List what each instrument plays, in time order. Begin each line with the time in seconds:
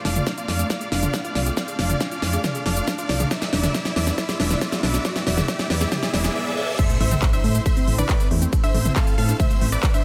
Already playing: riser
0.05 fm bass F1, synth arpeggio sound D4, supersaw synth D5 F5, snare, open hi-hat
0.16 synth arpeggio sound D4, mid tom, shaker
0.27 synth arpeggio sound D4, kick, snare, closed hi-hat, shaker
0.37 synth arpeggio sound F4, supersaw synth D5 F5, closed hi-hat, shaker
0.48 fm bass F2, synth arpeggio sound D5, snare, open hi-hat
0.59 synth arpeggio sound G#4, closed hi-hat, shaker
0.70 synth arpeggio sound D5, supersaw synth D5 F5, kick, snare, closed hi-hat, shaker
0.81 synth arpeggio sound G#4, closed hi-hat, shaker
0.92 fm bass F1, synth arpeggio sound D4, supersaw synth D5 F5, snare, open hi-hat
1.03 synth arpeggio sound D4, closed hi-hat, mid tom, shaker
1.14 synth arpeggio sound D4, kick, snare, closed hi-hat, shaker
1.25 synth arpeggio sound F4, supersaw synth D5 F5, closed hi-hat, shaker
1.35 fm bass C2, synth arpeggio sound D5, snare, open hi-hat
1.46 synth arpeggio sound G#4, closed hi-hat, shaker
1.57 supersaw synth D5 F5, synth arpeggio sound D5, kick, snare, closed hi-hat, shaker
1.68 synth arpeggio sound G#4, closed hi-hat, shaker
1.79 fm bass F1, synth arpeggio sound D4, supersaw synth D5 F5, snare, open hi-hat
1.90 synth arpeggio sound D4, closed hi-hat, mid tom, shaker
2.01 synth arpeggio sound D4, kick, snare, closed hi-hat, shaker
2.11 synth arpeggio sound F4, supersaw synth D5 F5, closed hi-hat, shaker
2.22 fm bass F2, synth arpeggio sound D5, snare, open hi-hat
2.33 synth arpeggio sound G#4, closed hi-hat, shaker
2.44 supersaw synth D5 F5, synth arpeggio sound D5, kick, snare, closed hi-hat, mid tom, shaker
2.55 synth arpeggio sound G#4, closed hi-hat, shaker
2.66 fm bass F1, synth arpeggio sound D4, supersaw synth D5 F5, snare, open hi-hat
2.77 synth arpeggio sound D4, closed hi-hat, shaker
2.87 synth arpeggio sound D4, kick, snare, closed hi-hat, shaker
2.98 synth arpeggio sound F4, supersaw synth D5 F5, closed hi-hat, shaker
3.09 fm bass C2, synth arpeggio sound D5, snare, open hi-hat
3.20 synth arpeggio sound G#4, closed hi-hat, mid tom, shaker
3.31 supersaw synth D5 E5, synth arpeggio sound D5, kick, snare, closed hi-hat, shaker
3.42 synth arpeggio sound G#4, snare, closed hi-hat, shaker
3.53 fm bass E1, synth arpeggio sound D4, supersaw synth D5 E5, snare, open hi-hat
3.64 synth arpeggio sound D4, snare, closed hi-hat, mid tom, shaker
3.74 supersaw synth D5 E5, synth arpeggio sound D5, kick, snare, closed hi-hat, shaker
3.85 synth arpeggio sound G#4, snare, closed hi-hat, shaker
3.96 fm bass E2, synth arpeggio sound D4, supersaw synth D5 E5, snare, open hi-hat
4.07 synth arpeggio sound D4, snare, closed hi-hat, shaker
4.18 supersaw synth D5 E5, synth arpeggio sound D5, kick, snare, closed hi-hat, shaker
4.29 synth arpeggio sound G#4, snare, closed hi-hat, shaker
4.40 fm bass E1, synth arpeggio sound D4, supersaw synth D5 E5, snare, open hi-hat
4.50 synth arpeggio sound D4, snare, closed hi-hat, mid tom, shaker
4.61 synth arpeggio sound D5, supersaw synth D5 E5, kick, snare, closed hi-hat, shaker
4.72 synth arpeggio sound G#4, snare, closed hi-hat, shaker
4.83 fm bass B1, synth arpeggio sound D4, supersaw synth D5 E5, snare, open hi-hat
4.94 synth arpeggio sound D4, snare, closed hi-hat, shaker
5.05 synth arpeggio sound D5, supersaw synth D5 E5, kick, snare, closed hi-hat, shaker
5.16 synth arpeggio sound G#4, snare, closed hi-hat, shaker
5.27 fm bass E1, synth arpeggio sound D5, supersaw synth D5 E5, snare, open hi-hat
5.37 synth arpeggio sound G#4, snare, closed hi-hat, mid tom, shaker
5.48 synth arpeggio sound D5, supersaw synth D5 E5, kick, snare, closed hi-hat, shaker
5.59 synth arpeggio sound G#4, snare, closed hi-hat, shaker
5.70 fm bass E2, synth arpeggio sound D5, supersaw synth D5 E5, snare, open hi-hat
5.81 synth arpeggio sound G#4, snare, closed hi-hat, shaker
5.92 synth arpeggio sound D5, supersaw synth D5 E5, kick, snare, closed hi-hat, mid tom, reverse cymbal, shaker
6.03 synth arpeggio sound G#4, snare, closed hi-hat, shaker
6.13 fm bass E1, synth arpeggio sound D5, supersaw synth D5 E5, kick, snare, open hi-hat
6.24 synth arpeggio sound G#4, snare, closed hi-hat, shaker
6.35 supersaw synth D5 E5
6.57 supersaw synth D5 E5
6.79 synth arpeggio sound A3, supersaw synth C5 E5, synth pluck E5, kick, closed hi-hat, crash, ride, impact, shaker
6.90 synth arpeggio sound A3, closed hi-hat, shaker
7.01 fm bass A1, synth arpeggio sound A3, supersaw synth C5 E5, synth pluck E5, open hi-hat
7.11 synth arpeggio sound C4, closed hi-hat, mid tom, shaker
7.22 synth arpeggio sound A4, kick, clap, closed hi-hat, ride, shaker
7.33 synth arpeggio sound D4, supersaw synth C5 E5, synth pluck E5, closed hi-hat, shaker
7.44 fm bass A2, synth arpeggio sound A3, open hi-hat
7.55 synth arpeggio sound A3, closed hi-hat, shaker
7.66 synth arpeggio sound A3, supersaw synth C5 E5, synth pluck E5, kick, closed hi-hat, ride, shaker
7.77 synth arpeggio sound C4, closed hi-hat, shaker
7.87 fm bass A1, synth arpeggio sound A4, open hi-hat
7.98 synth arpeggio sound D4, supersaw synth B4 D5, synth pluck D5, closed hi-hat, mid tom, shaker
8.09 synth arpeggio sound A3, kick, clap, closed hi-hat, ride, shaker
8.20 synth arpeggio sound A3, closed hi-hat, shaker
8.31 fm bass E2, synth arpeggio sound A3, open hi-hat
8.42 synth arpeggio sound C4, closed hi-hat, shaker
8.53 synth arpeggio sound A4, kick, closed hi-hat, ride, shaker
8.64 synth arpeggio sound D4, supersaw synth C5 E5, synth pluck E5, closed hi-hat, shaker
8.74 fm bass A1, synth arpeggio sound A3, open hi-hat
8.85 synth arpeggio sound A3, closed hi-hat, mid tom, shaker
8.96 synth arpeggio sound A3, supersaw synth A4 F5, synth pluck F5, kick, clap, closed hi-hat, ride, shaker
9.07 synth arpeggio sound C4, closed hi-hat, shaker
9.18 fm bass A2, supersaw synth A4 F5, synth arpeggio sound A4, synth pluck F5, open hi-hat
9.29 synth arpeggio sound D4, closed hi-hat, shaker
9.40 synth arpeggio sound A3, supersaw synth C5 E5, synth pluck E5, kick, closed hi-hat, mid tom, ride, shaker
9.51 synth arpeggio sound A3, closed hi-hat, shaker
9.61 fm bass A1, synth arpeggio sound A3, open hi-hat
9.72 synth arpeggio sound C4, supersaw synth B4 D5, synth pluck D5, closed hi-hat, shaker
9.83 synth arpeggio sound A4, kick, clap, closed hi-hat, ride, shaker
9.94 synth arpeggio sound D4, supersaw synth C5 E5, synth pluck E5, closed hi-hat, shaker